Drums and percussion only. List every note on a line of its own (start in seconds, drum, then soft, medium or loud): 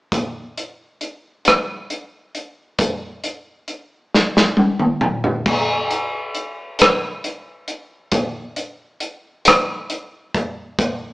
0.12 kick medium
0.12 closed hi-hat medium
0.58 closed hi-hat soft
1.01 closed hi-hat soft
1.45 cross-stick medium
1.45 closed hi-hat medium
1.90 closed hi-hat soft
2.35 closed hi-hat soft
2.79 kick medium
2.79 closed hi-hat medium
3.24 closed hi-hat soft
3.68 closed hi-hat soft
4.14 snare soft
4.37 snare soft
4.57 high tom soft
4.79 mid tom soft
5.01 mid tom medium
5.24 floor tom medium
5.46 kick medium
5.46 crash medium
5.91 closed hi-hat soft
6.35 closed hi-hat soft
6.79 cross-stick medium
6.79 closed hi-hat medium
7.24 closed hi-hat soft
7.68 closed hi-hat soft
8.12 kick loud
8.12 closed hi-hat medium
8.56 closed hi-hat soft
9.00 closed hi-hat soft
9.45 cross-stick medium
9.45 closed hi-hat medium
9.90 closed hi-hat soft
10.34 kick medium
10.34 closed hi-hat soft
10.79 kick loud
10.79 closed hi-hat medium